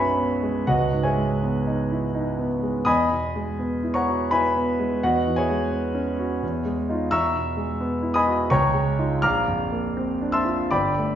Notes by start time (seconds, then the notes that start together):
Already playing: B1 F#2 G#3 B3 C#4 F#4 B4 C#5 D#5 E5 F#5 G#5 A#5 B5 C#6 D#6
0.17 B3
0.43 G#3
0.67 C#2 F#4 B4 D#5 F#5
0.92 G#2
1.03 G#4 C#5 E5 G#5
1.17 G#3
1.43 B3
1.67 D#4
1.91 E4
2.14 D#4
2.39 B3
2.63 G#3
2.85 E2 D#5 G#5 B5 D#6
3.10 B2
3.36 G#3
3.59 B3
3.83 E4
3.94 C#5 F#5 A#5 C#6
4.08 F#4
4.31 E4 B4 E5 G#5 B5
4.57 B3
4.79 G#3
5.03 E2 F#4 B4 D#5 F#5
5.27 E3
5.36 G#4 C#5 E5 G#5
5.50 G#3
5.72 B3
5.94 C#4
6.19 F#4
6.43 E2
6.65 G#3
6.89 D#4 F4
7.11 E2 E5 A#5 C#6 E6
7.35 B2
7.57 G#3
7.81 B3
8.02 E4
8.14 D#5 G#5 B5 D#6
8.27 F#4
8.50 C#2 C#5 G5 A#5 C#6
8.74 G#3
8.99 D#4 F4
9.22 A#1 F5 A#5 D6 F6
9.48 F2
9.72 A#3
9.97 C4
10.21 D4
10.32 E5 A5 C6 E6
10.45 F4
10.71 G1 D5 G5 B5 D6
10.98 A3